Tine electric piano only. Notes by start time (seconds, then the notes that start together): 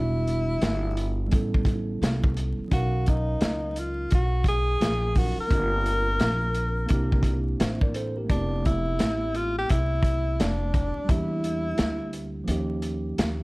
Already playing: G3 B3 D4 E4 F#4
1.27 G3 B3 C#4
1.33 E4 A4
2.68 F#3 C#4 D#4
2.73 A#4 F5
5.15 F#3 C#4 D#4 F4 A#4
5.48 A#3 C4 D4
5.53 F4 A#4
6.86 A#3 C4 D4
6.91 E4 G4
7.60 C5 E5
7.82 A#4 D5
7.95 A4 C5
8.17 G4 A#4
8.25 A3 B3
8.29 C4 E4 G4
11.04 G3 A#3 D4
11.10 E4 G4
12.44 F3 A#3 C#4
12.49 D#4 G4